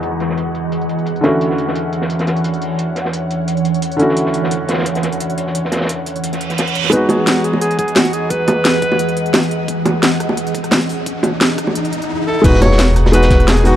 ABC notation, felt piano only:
X:1
M:4/4
L:1/8
Q:"Swing 16ths" 1/4=174
K:E
V:1 name="Felt piano"
[E,,G,B,DF]6- [E,,G,B,DF] [=D,A,CEF]- | [=D,A,CEF]8- | [=D,A,CEF]6- [D,A,CEF] [D,A,CEF]- | [=D,A,CEF]8- |
[=D,A,CEF]6- [D,A,CEF] z | [G,B,DF]8- | [G,B,DF]8- | [G,B,DF]8- |
[G,B,DF]6 z2 | [G,B,DF]4 [G,B,DF] z2 [G,B,DF] |]